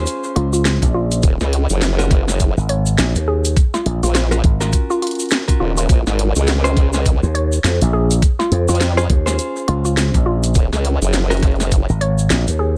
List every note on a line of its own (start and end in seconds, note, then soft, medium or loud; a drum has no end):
0.00 1.22 C#4 medium
0.00 1.22 F4 medium
0.00 1.22 G#4 medium
0.00 1.22 C5 medium
0.06 closed hi-hat medium
0.06 shaker medium
0.24 shaker soft
0.36 0.80 C#2 loud
0.36 0.47 F4 medium
0.36 closed hi-hat medium
0.53 0.61 F4 medium
0.53 shaker medium
0.65 snare loud
0.65 closed hi-hat medium
0.65 shaker medium
0.82 1.21 A#1 loud
0.82 kick medium
0.82 closed hi-hat medium
0.82 shaker soft
0.94 1.30 F4 medium
1.12 closed hi-hat medium
1.12 shaker medium
1.22 1.38 D#1 medium
1.22 kick loud
1.22 closed hi-hat medium
1.22 shaker medium
1.40 1.67 C#2 loud
1.40 snare medium
1.40 shaker soft
1.53 closed hi-hat medium
1.70 2.54 F#1 loud
1.70 closed hi-hat soft
1.70 shaker medium
1.82 snare loud
1.82 closed hi-hat medium
1.82 shaker medium
1.98 2.24 C#4 medium
1.98 2.24 F4 medium
1.98 2.24 F#4 medium
1.98 2.24 A#4 loud
1.98 closed hi-hat soft
1.98 shaker soft
2.11 kick loud
2.11 snare soft
2.11 closed hi-hat medium
2.28 snare medium
2.28 shaker medium
2.40 kick medium
2.40 closed hi-hat medium
2.40 shaker medium
2.57 2.96 G#1 loud
2.57 shaker soft
2.69 3.16 C#5 medium
2.69 closed hi-hat medium
2.86 shaker medium
2.98 3.13 A#1 loud
2.98 snare loud
2.98 closed hi-hat medium
2.98 shaker medium
3.15 3.54 D#2 loud
3.15 closed hi-hat medium
3.15 shaker soft
3.28 3.48 G#4 medium
3.45 closed hi-hat medium
3.45 shaker medium
3.57 kick loud
3.57 closed hi-hat medium
3.57 shaker medium
3.74 3.90 F4 loud
3.74 snare soft
3.74 shaker soft
3.86 4.00 A#1 loud
3.86 closed hi-hat medium
4.03 4.42 A#1 loud
4.03 4.11 F4 medium
4.03 closed hi-hat soft
4.03 shaker medium
4.14 4.26 F4 medium
4.14 snare loud
4.14 closed hi-hat medium
4.14 shaker medium
4.31 4.38 C#4 medium
4.31 4.38 F4 medium
4.31 4.38 F#4 medium
4.31 4.38 A#4 loud
4.31 closed hi-hat soft
4.31 shaker soft
4.44 4.71 G#1 medium
4.44 kick loud
4.44 closed hi-hat medium
4.61 5.45 C#4 medium
4.61 5.45 F4 medium
4.61 5.45 F#4 medium
4.61 5.45 A#4 medium
4.61 snare soft
4.61 shaker medium
4.73 kick medium
4.73 closed hi-hat medium
4.73 shaker medium
4.90 4.98 F4 medium
4.90 shaker soft
5.02 5.13 F4 medium
5.02 closed hi-hat medium
5.07 closed hi-hat medium
5.11 closed hi-hat soft
5.15 closed hi-hat soft
5.19 closed hi-hat soft
5.19 shaker medium
5.23 closed hi-hat soft
5.26 closed hi-hat soft
5.29 snare loud
5.29 closed hi-hat soft
5.29 shaker medium
5.32 closed hi-hat medium
5.48 5.88 C#4 medium
5.48 5.88 F4 medium
5.48 5.88 F#4 medium
5.48 5.88 A#4 medium
5.48 kick medium
5.48 closed hi-hat medium
5.48 shaker soft
5.60 5.88 D#1 medium
5.60 5.71 F4 medium
5.77 5.85 F4 medium
5.77 closed hi-hat medium
5.77 shaker medium
5.89 6.04 A#1 loud
5.89 kick loud
5.89 closed hi-hat medium
5.89 shaker medium
6.07 6.33 G#1 loud
6.07 snare soft
6.07 shaker soft
6.19 closed hi-hat medium
6.36 7.21 C#2 loud
6.36 closed hi-hat soft
6.36 shaker medium
6.47 snare loud
6.47 closed hi-hat medium
6.47 shaker medium
6.64 6.90 C#4 medium
6.64 6.90 F4 medium
6.64 6.90 G#4 medium
6.64 6.90 C5 loud
6.64 closed hi-hat soft
6.64 shaker soft
6.77 kick loud
6.77 snare soft
6.77 closed hi-hat medium
6.93 7.00 C#4 medium
6.93 7.00 F4 medium
6.93 7.00 G#4 medium
6.93 7.00 C5 medium
6.93 snare soft
6.93 shaker medium
7.05 kick medium
7.05 closed hi-hat medium
7.05 shaker medium
7.23 7.62 D#2 loud
7.23 shaker soft
7.35 7.81 C#5 medium
7.35 closed hi-hat medium
7.52 shaker medium
7.64 7.79 F2 loud
7.64 snare loud
7.64 closed hi-hat medium
7.64 shaker medium
7.81 8.21 A#1 medium
7.81 closed hi-hat medium
7.81 shaker soft
7.93 8.14 G#4 medium
8.11 closed hi-hat medium
8.11 shaker medium
8.22 kick loud
8.22 closed hi-hat medium
8.22 shaker medium
8.39 8.56 F4 medium
8.39 snare medium
8.39 shaker soft
8.51 8.66 F2 loud
8.51 closed hi-hat medium
8.68 9.08 F2 loud
8.68 8.85 F4 medium
8.68 shaker medium
8.75 closed hi-hat soft
8.81 snare loud
8.81 closed hi-hat medium
8.81 shaker medium
8.97 9.04 C#4 medium
8.97 9.04 F4 medium
8.97 9.04 G#4 medium
8.97 9.04 C5 loud
8.97 closed hi-hat soft
8.97 shaker soft
9.10 9.37 D#2 medium
9.10 kick loud
9.10 closed hi-hat medium
9.26 10.54 C#4 medium
9.26 10.54 F4 medium
9.26 10.54 G#4 medium
9.26 10.54 C5 medium
9.26 snare medium
9.26 shaker medium
9.39 closed hi-hat medium
9.39 shaker medium
9.56 shaker soft
9.68 10.12 C#2 medium
9.68 9.79 F4 medium
9.68 closed hi-hat medium
9.85 9.93 F4 medium
9.85 shaker medium
9.97 snare loud
9.97 closed hi-hat medium
9.97 shaker medium
10.14 10.53 A#1 medium
10.14 kick medium
10.14 closed hi-hat medium
10.14 shaker soft
10.26 10.62 F4 medium
10.43 closed hi-hat medium
10.43 shaker medium
10.55 10.70 D#1 loud
10.55 kick loud
10.55 closed hi-hat medium
10.55 shaker medium
10.72 10.99 C#2 medium
10.72 snare medium
10.72 shaker soft
10.85 closed hi-hat medium
11.01 11.86 F#1 loud
11.01 closed hi-hat soft
11.01 shaker medium
11.13 snare loud
11.13 closed hi-hat medium
11.13 shaker medium
11.30 11.56 C#4 medium
11.30 11.56 F4 medium
11.30 11.56 F#4 medium
11.30 11.56 A#4 loud
11.30 closed hi-hat soft
11.30 shaker soft
11.34 closed hi-hat soft
11.37 closed hi-hat soft
11.40 kick loud
11.40 snare soft
11.40 closed hi-hat soft
11.43 closed hi-hat medium
11.47 closed hi-hat soft
11.51 closed hi-hat soft
11.56 closed hi-hat soft
11.60 snare medium
11.60 shaker medium
11.71 kick medium
11.71 closed hi-hat medium
11.71 shaker medium
11.89 12.28 G#1 loud
11.89 shaker soft
12.01 12.47 C#5 medium
12.01 closed hi-hat medium
12.18 shaker medium
12.30 12.45 A#1 loud
12.30 snare loud
12.30 closed hi-hat medium
12.30 shaker medium
12.48 12.78 D#2 loud
12.48 closed hi-hat medium
12.48 shaker soft
12.59 12.78 G#4 medium